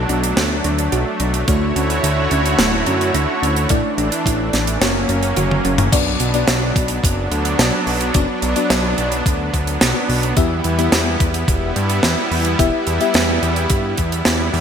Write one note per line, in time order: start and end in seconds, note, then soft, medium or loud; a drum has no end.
0.00 1.44 F#3 medium
0.00 4.78 A3 medium
0.00 1.42 B3 medium
0.00 1.42 D4 medium
0.00 1.44 D4 medium
0.00 1.42 F#4 medium
0.00 1.42 D5 loud
0.09 0.34 B1 medium
0.09 0.33 D4 medium
0.09 closed hi-hat medium
0.23 closed hi-hat medium
0.37 0.61 D2 medium
0.37 0.52 B3 loud
0.37 snare loud
0.37 closed hi-hat loud
0.64 0.89 D2 medium
0.64 0.80 D4 medium
0.64 closed hi-hat medium
0.79 closed hi-hat medium
0.92 1.05 B1 loud
0.92 1.08 F#4 loud
0.92 closed hi-hat medium
1.20 1.45 B1 medium
1.20 1.44 D4 medium
1.20 closed hi-hat medium
1.34 closed hi-hat medium
1.48 1.72 D2 loud
1.48 3.68 D3 medium
1.48 3.65 A3 medium
1.48 1.64 A3 loud
1.48 3.65 D4 medium
1.48 3.68 E4 medium
1.48 3.68 F#4 medium
1.48 3.65 F#4 medium
1.48 3.68 C#5 medium
1.48 3.65 C#5 loud
1.48 kick loud
1.48 closed hi-hat medium
1.76 2.00 D2 medium
1.76 1.91 C#4 medium
1.76 closed hi-hat medium
1.90 closed hi-hat medium
2.04 2.28 D2 medium
2.04 2.19 D4 loud
2.04 closed hi-hat loud
2.31 2.56 D2 medium
2.31 2.55 C#4 medium
2.31 closed hi-hat medium
2.46 closed hi-hat medium
2.59 2.83 D1 loud
2.59 2.75 A3 loud
2.59 snare loud
2.59 closed hi-hat loud
2.86 3.11 F#2 loud
2.86 3.03 C#4 medium
2.86 closed hi-hat medium
3.01 closed hi-hat medium
3.14 3.27 D2 loud
3.14 3.30 D4 loud
3.14 closed hi-hat medium
3.42 3.67 D2 medium
3.42 3.66 C#4 medium
3.42 closed hi-hat medium
3.56 closed hi-hat medium
3.69 3.82 A2 loud
3.69 4.80 E3 medium
3.69 4.76 A3 medium
3.69 3.86 A3 loud
3.69 4.76 D4 medium
3.69 4.80 D4 medium
3.69 4.76 E4 medium
3.69 4.76 D5 medium
3.69 kick loud
3.69 closed hi-hat loud
3.98 4.10 A1 medium
3.98 4.14 D4 medium
3.98 closed hi-hat medium
4.12 closed hi-hat medium
4.26 4.50 A1 loud
4.26 4.41 E4 loud
4.26 kick medium
4.26 closed hi-hat loud
4.53 4.78 A1 medium
4.53 4.77 D4 medium
4.53 snare soft
4.53 closed hi-hat medium
4.67 closed hi-hat medium
4.81 5.06 F#1 medium
4.81 5.92 F#3 medium
4.81 5.87 A#3 medium
4.81 4.97 A#3 loud
4.81 5.92 A#3 medium
4.81 5.87 C#4 medium
4.81 5.92 C#4 medium
4.81 5.87 F#4 medium
4.81 5.87 C#5 medium
4.81 snare loud
4.81 closed hi-hat loud
5.09 5.33 F#1 medium
5.09 5.25 C#4 medium
5.09 closed hi-hat medium
5.23 closed hi-hat medium
5.37 5.61 F#1 medium
5.37 5.53 F#4 loud
5.37 closed hi-hat medium
5.37 high tom medium
5.51 high tom medium
5.65 5.89 F#1 loud
5.65 5.88 C#4 medium
5.65 closed hi-hat medium
5.78 closed hi-hat medium
5.78 mid tom medium
5.92 6.17 B1 medium
5.92 10.33 F#3 medium
5.92 14.61 B3 medium
5.92 6.31 B3 medium
5.92 10.33 D4 medium
5.92 6.31 D4 medium
5.92 6.31 F#4 medium
5.92 6.31 D5 loud
5.92 kick loud
5.92 closed hi-hat loud
5.92 crash loud
6.20 6.45 B1 medium
6.20 closed hi-hat medium
6.34 8.11 B3 medium
6.34 8.11 D4 medium
6.34 8.11 F#4 medium
6.34 8.11 D5 loud
6.34 closed hi-hat medium
6.48 6.72 B1 medium
6.48 snare loud
6.48 closed hi-hat loud
6.76 7.00 B1 medium
6.76 kick loud
6.76 closed hi-hat medium
6.88 closed hi-hat medium
7.04 7.28 F#1 loud
7.04 kick loud
7.04 closed hi-hat loud
7.31 7.56 D2 loud
7.31 closed hi-hat medium
7.45 closed hi-hat medium
7.59 7.71 B1 loud
7.59 snare loud
7.59 closed hi-hat loud
7.87 8.11 B1 medium
7.87 open hi-hat medium
8.01 closed hi-hat medium
8.14 8.27 F#1 loud
8.14 8.53 B3 medium
8.14 8.53 D4 medium
8.14 8.53 F#4 medium
8.14 8.53 D5 loud
8.14 kick loud
8.14 closed hi-hat loud
8.42 8.55 B1 medium
8.42 closed hi-hat medium
8.56 10.34 B3 medium
8.56 10.34 D4 medium
8.56 10.34 F#4 medium
8.56 10.34 D5 medium
8.56 closed hi-hat medium
8.70 8.95 B1 loud
8.70 snare loud
8.70 closed hi-hat loud
8.98 9.22 B1 medium
8.98 closed hi-hat medium
9.12 closed hi-hat medium
9.26 9.50 D2 medium
9.26 kick loud
9.26 closed hi-hat loud
9.54 9.78 D2 medium
9.54 kick medium
9.54 closed hi-hat medium
9.67 closed hi-hat medium
9.81 9.94 B1 loud
9.81 snare loud
9.81 closed hi-hat loud
10.09 10.34 B1 medium
10.09 open hi-hat medium
10.23 closed hi-hat medium
10.37 10.61 E2 loud
10.37 14.61 G3 medium
10.37 10.75 B3 medium
10.37 10.75 E4 medium
10.37 14.61 E4 medium
10.37 10.75 G4 medium
10.37 10.75 E5 loud
10.37 kick loud
10.37 closed hi-hat medium
10.64 10.89 E2 medium
10.64 closed hi-hat medium
10.79 12.56 B3 medium
10.79 12.56 E4 medium
10.79 12.56 G4 medium
10.79 12.56 E5 loud
10.79 closed hi-hat medium
10.92 11.17 E2 medium
10.92 snare loud
10.92 closed hi-hat loud
11.20 11.45 E2 medium
11.20 kick loud
11.20 closed hi-hat medium
11.34 closed hi-hat medium
11.48 11.72 E1 loud
11.48 kick loud
11.48 closed hi-hat medium
11.76 12.00 G2 loud
11.76 closed hi-hat medium
11.90 closed hi-hat medium
12.03 12.16 E2 loud
12.03 snare loud
12.03 closed hi-hat loud
12.31 12.56 E2 medium
12.31 open hi-hat medium
12.45 closed hi-hat medium
12.59 12.71 E1 loud
12.59 12.98 B3 medium
12.59 12.98 E4 medium
12.59 12.98 G4 medium
12.59 12.98 E5 loud
12.59 kick loud
12.59 closed hi-hat loud
12.87 12.99 E2 medium
12.87 closed hi-hat medium
13.01 14.61 B3 medium
13.01 14.61 E4 medium
13.01 14.61 G4 medium
13.01 14.61 E5 medium
13.01 closed hi-hat medium
13.14 13.39 E2 loud
13.14 snare loud
13.14 closed hi-hat medium
13.42 13.67 E2 medium
13.42 closed hi-hat medium
13.56 closed hi-hat medium
13.70 13.95 G2 medium
13.70 kick loud
13.70 closed hi-hat loud
13.97 14.22 E2 medium
13.97 kick medium
13.97 closed hi-hat medium
14.12 closed hi-hat medium
14.25 14.50 E2 medium
14.25 snare loud
14.25 closed hi-hat medium
14.54 14.61 E2 loud
14.54 open hi-hat medium